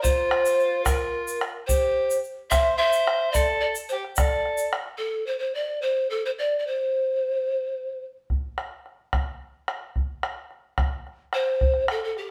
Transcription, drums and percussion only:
0.04 bombo low medium
0.04 shaker medium
0.31 bombo rim medium
0.46 shaker medium
0.60 shaker soft
0.86 bombo rim medium
0.86 bombo low medium
0.86 shaker medium
1.28 shaker medium
1.41 bombo rim medium
1.69 bombo low medium
1.69 shaker loud
2.10 shaker medium
2.24 shaker soft
2.51 bombo rim medium
2.51 bombo low medium
2.51 shaker medium
2.93 shaker medium
3.07 bombo rim medium
3.34 bombo low medium
3.34 shaker medium
3.49 bombo rim soft
3.75 shaker medium
3.89 shaker soft
4.05 bombo rim soft
4.16 bombo rim medium
4.16 bombo low medium
4.16 shaker medium
4.45 bombo rim soft
4.58 shaker medium
4.73 bombo rim medium
4.86 bombo rim soft
8.30 bombo rim soft
8.30 bombo low medium
8.58 bombo rim medium
8.86 bombo rim soft
9.13 bombo rim medium
9.13 bombo low medium
9.68 bombo rim medium
9.96 bombo rim soft
9.96 bombo low medium
10.23 bombo rim medium
10.51 bombo rim soft
10.78 bombo rim medium
10.78 bombo low medium
11.07 bombo rim soft
11.33 bombo rim medium
11.48 bombo rim soft
11.61 bombo rim soft
11.61 bombo low medium
11.74 bombo rim soft
11.88 bombo rim medium
12.02 bombo rim soft
12.17 bombo rim soft

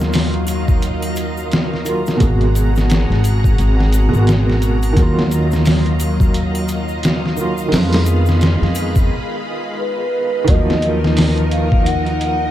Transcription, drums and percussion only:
0.01 snare soft
0.13 snare loud
0.13 open hi-hat medium
0.13 shaker soft
0.34 closed hi-hat soft
0.47 closed hi-hat medium
0.47 triangle medium
0.47 shaker medium
0.68 kick medium
0.68 shaker medium
0.82 closed hi-hat medium
0.82 shaker soft
1.02 closed hi-hat soft
1.02 triangle medium
1.16 closed hi-hat medium
1.16 shaker medium
1.37 shaker soft
1.52 snare loud
1.52 closed hi-hat medium
1.52 shaker soft
1.74 snare soft
1.86 closed hi-hat medium
1.86 shaker medium
2.06 snare medium
2.06 shaker medium
2.20 kick loud
2.20 closed hi-hat medium
2.20 shaker soft
2.41 closed hi-hat soft
2.55 closed hi-hat medium
2.55 shaker medium
2.76 snare medium
2.76 shaker soft
2.90 snare loud
2.90 closed hi-hat medium
2.90 shaker soft
3.12 snare soft
3.24 closed hi-hat medium
3.24 triangle medium
3.24 shaker medium
3.44 kick medium
3.44 shaker soft
3.58 closed hi-hat medium
3.58 shaker soft
3.80 snare soft
3.92 closed hi-hat medium
3.92 shaker medium
4.14 shaker soft
4.27 snare loud
4.27 closed hi-hat medium
4.27 shaker soft
4.50 snare soft
4.62 closed hi-hat medium
4.62 shaker medium
4.82 closed hi-hat soft
4.82 triangle medium
4.82 shaker soft
4.97 kick loud
4.97 closed hi-hat medium
4.97 shaker soft
5.19 snare medium
5.31 closed hi-hat medium
5.31 shaker medium
5.51 snare soft
5.51 shaker medium
5.65 snare loud
5.65 open hi-hat medium
5.65 shaker soft
5.86 closed hi-hat soft
6.00 closed hi-hat medium
6.00 triangle medium
6.00 shaker medium
6.20 kick loud
6.20 shaker medium
6.34 closed hi-hat medium
6.34 shaker soft
6.55 closed hi-hat soft
6.55 triangle medium
6.68 closed hi-hat medium
6.68 shaker medium
6.88 shaker soft
7.03 snare loud
7.03 closed hi-hat medium
7.03 shaker soft
7.26 snare soft
7.37 shaker medium
7.58 shaker soft
7.72 snare loud
7.72 open hi-hat medium
7.72 shaker soft
7.93 snare loud
7.93 open hi-hat medium
8.06 closed hi-hat medium
8.06 shaker medium
8.26 snare medium
8.26 shaker soft
8.41 snare loud
8.41 closed hi-hat medium
8.41 shaker soft
8.63 snare soft
8.75 closed hi-hat medium
8.75 triangle medium
8.75 shaker medium
8.95 kick medium
8.95 shaker medium
10.48 kick loud
10.48 closed hi-hat medium
10.70 snare medium
10.82 closed hi-hat medium
11.04 snare medium
11.17 snare loud
11.17 open hi-hat medium
11.38 closed hi-hat soft
11.51 closed hi-hat medium
11.72 kick loud
11.86 closed hi-hat medium
12.06 closed hi-hat soft
12.21 closed hi-hat medium

